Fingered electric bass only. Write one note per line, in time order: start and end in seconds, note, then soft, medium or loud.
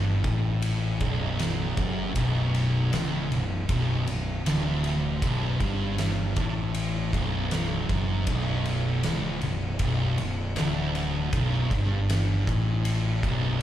0.00 0.21 G1 loud
0.24 0.98 A1 loud
1.01 1.74 B0 medium
1.77 2.14 F#1 loud
2.16 2.89 B0 medium
2.93 3.29 C#1 loud
3.32 3.68 B0 medium
3.69 4.05 B0 loud
4.08 4.44 B0 medium
4.47 5.19 D1 medium
5.23 5.59 B0 medium
5.60 6.33 G1 medium
6.36 7.10 A1 loud
7.13 7.86 B0 loud
7.89 8.25 F#1 medium
8.27 9.00 B0 medium
9.05 9.40 C#1 medium
9.44 9.79 B0 medium
9.79 10.16 B0 loud
10.20 10.55 B0 medium
10.59 11.30 D1 loud
11.33 11.68 B0 medium
11.71 12.43 G1 medium
12.47 13.19 A1 loud
13.24 13.62 B0 loud